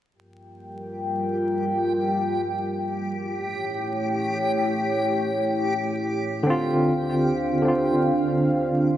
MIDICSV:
0, 0, Header, 1, 4, 480
1, 0, Start_track
1, 0, Tempo, 500000
1, 8613, End_track
2, 0, Start_track
2, 0, Title_t, "Analog synth pad"
2, 0, Program_c, 0, 89
2, 124, Note_on_c, 0, 55, 73
2, 125, Note_on_c, 0, 79, 83
2, 126, Note_on_c, 0, 70, 72
2, 129, Note_on_c, 0, 65, 72
2, 3130, Note_off_c, 0, 55, 0
2, 3130, Note_off_c, 0, 79, 0
2, 3131, Note_off_c, 0, 70, 0
2, 3132, Note_off_c, 0, 65, 0
2, 3159, Note_on_c, 0, 79, 82
2, 3161, Note_on_c, 0, 64, 69
2, 3163, Note_on_c, 0, 73, 70
2, 3165, Note_on_c, 0, 57, 78
2, 6163, Note_off_c, 0, 79, 0
2, 6164, Note_off_c, 0, 64, 0
2, 6165, Note_off_c, 0, 73, 0
2, 6166, Note_off_c, 0, 57, 0
2, 6195, Note_on_c, 0, 62, 75
2, 6199, Note_on_c, 0, 77, 86
2, 6201, Note_on_c, 0, 50, 75
2, 6201, Note_on_c, 0, 72, 72
2, 8613, Note_off_c, 0, 50, 0
2, 8613, Note_off_c, 0, 62, 0
2, 8613, Note_off_c, 0, 72, 0
2, 8613, Note_off_c, 0, 77, 0
2, 8613, End_track
3, 0, Start_track
3, 0, Title_t, "Synth texture"
3, 0, Program_c, 1, 99
3, 124, Note_on_c, 1, 67, 76
3, 8613, Note_off_c, 1, 67, 0
3, 8613, End_track
4, 0, Start_track
4, 0, Title_t, "Tine electric piano"
4, 0, Program_c, 2, 4
4, 6174, Note_on_c, 2, 50, 88
4, 6208, Note_on_c, 2, 60, 78
4, 6241, Note_on_c, 2, 65, 93
4, 6377, Control_c, 2, 64, 127
4, 7279, Note_off_c, 2, 50, 0
4, 7296, Note_off_c, 2, 60, 0
4, 7312, Note_on_c, 2, 50, 68
4, 7313, Note_off_c, 2, 65, 0
4, 7345, Note_on_c, 2, 60, 60
4, 7374, Note_on_c, 2, 65, 69
4, 8613, Note_off_c, 2, 50, 0
4, 8613, Note_off_c, 2, 60, 0
4, 8613, Note_off_c, 2, 65, 0
4, 8613, End_track
0, 0, End_of_file